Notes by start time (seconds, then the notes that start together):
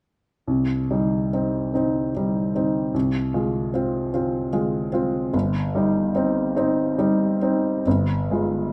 0.48 C2
0.91 G3 D#4
1.33 C4 D#4
1.74 C4 D#4
2.16 G3 D#4
2.55 C4 D#4
2.94 C2
3.34 G#3 F4
3.74 C4 F4
4.14 C4 F4
4.53 G#3 F4
4.92 C4 F4
5.33 G1
5.75 G3 D#4
6.15 C4 D#4
6.56 C4 D#4
6.98 G3 D#4
7.42 C4 D#4
7.87 G1
8.31 G#3 F4